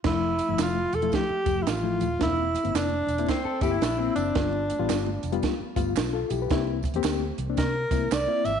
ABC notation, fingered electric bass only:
X:1
M:4/4
L:1/16
Q:"Swing" 1/4=112
K:F
V:1 name="Fingered electric bass" clef=bass
F,,,3 G,,, F,,,2 E,,,2 z2 F,,,2 A,,,2 _E,,,2 | E,,,3 G,,, F,,,2 E,,,2 z2 G,,,2 B,,,2 _G,,,2 | G,,,3 A,,, G,,,2 F,,,2 z2 G,,,2 =B,,,2 B,,,2 | C,,3 E,, D,,2 C,,2 C,2 C,,2 C,, z _A,,,2 |]